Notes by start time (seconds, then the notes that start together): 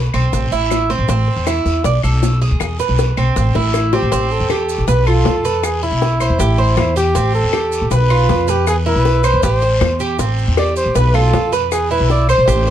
Already playing: B1 B4
0.14 B1 C4, high bongo, short guiro, claves, maracas
0.33 A1, high bongo, long guiro, maracas
0.51 A1 E4, maracas
0.70 high bongo, low bongo, short guiro, claves, maracas
0.90 C4, high bongo, short guiro, maracas
0.99 A1
1.08 A1 C4, high bongo, long guiro, maracas
1.28 high bongo
1.36 E2
1.47 E4, high bongo, short guiro, claves, maracas
1.65 E2, high bongo, short guiro, maracas
1.84 B1 D5, high bongo, long guiro, maracas
2.03 B1 A4, claves, maracas
2.23 high bongo, low bongo, short guiro, maracas
2.41 G#4, high bongo, short guiro, maracas
2.51 D2
2.60 E2, high bongo, long guiro, claves, maracas
2.79 B4, high bongo, maracas
2.89 B1
2.98 high bongo, short guiro, maracas
3.17 B1 C4, high bongo, short guiro, claves, maracas
3.36 A1, high bongo, long guiro, maracas
3.55 A1 E4, high bongo
3.74 E4, high bongo, short guiro, claves, maracas
3.93 C4 G4, low bongo, short guiro, maracas
4.02 A1
4.12 A1 C4, high bongo, long guiro, maracas
4.31 A4, maracas
4.40 E2
4.50 G4, high bongo, short guiro, claves, maracas
4.69 short guiro, maracas
4.78 A1
4.88 B1 B4, high bongo, long guiro, maracas
5.07 F4 A4, claves, maracas
5.25 F2, high bongo, low bongo, short guiro, maracas
5.45 B4, short guiro, maracas
5.63 E2 G#4, high bongo, long guiro, claves, maracas
5.83 E4, high bongo, maracas
5.92 B1
6.02 high bongo, short guiro, maracas
6.20 C5, high bongo, short guiro, claves, maracas
6.30 E2
6.39 A1 G4, high bongo, long guiro, maracas
6.58 C5, high bongo, maracas
6.77 E2 E4, high bongo, low bongo, short guiro, claves, maracas
6.96 G4, short guiro, maracas
7.15 A1 C4, high bongo, long guiro, maracas
7.34 A4, maracas
7.44 E2
7.53 G4, high bongo, short guiro, claves, maracas
7.72 short guiro, maracas
7.81 A1
7.91 B1 B4, high bongo, long guiro, maracas
8.10 F4, claves, maracas
8.29 F2, high bongo, low bongo, short guiro, maracas
8.48 G4 B4, short guiro, maracas
8.67 E2 G#4, high bongo, long guiro, claves, maracas
8.86 E4 B4, high bongo, maracas
8.95 B1
9.05 high bongo, short guiro, maracas
9.24 C5, high bongo, short guiro, claves, maracas
9.34 E2
9.43 A1 G4 C5, high bongo, long guiro, maracas
9.62 C5, high bongo, maracas
9.81 E2, high bongo, low bongo, short guiro, claves, maracas
10.00 G4, short guiro, maracas
10.19 A1 C4, high bongo, long guiro, maracas
10.38 maracas
10.48 E2
10.57 G4 D5, high bongo, short guiro, claves, maracas
10.76 C5, short guiro, maracas
10.86 A1
10.95 B1 B4, high bongo, long guiro, maracas
11.14 F4 A4, claves, maracas
11.33 F2, high bongo, low bongo, short guiro, maracas
11.52 B4, short guiro, maracas
11.71 E2 G#4, high bongo, long guiro, claves, maracas
11.91 E4 B4, high bongo, maracas
12.00 B1
12.10 D5, high bongo, short guiro, maracas
12.29 C5, high bongo, short guiro, claves, maracas
12.38 B1
12.48 A1 G4, high bongo, long guiro, maracas
12.67 C5, high bongo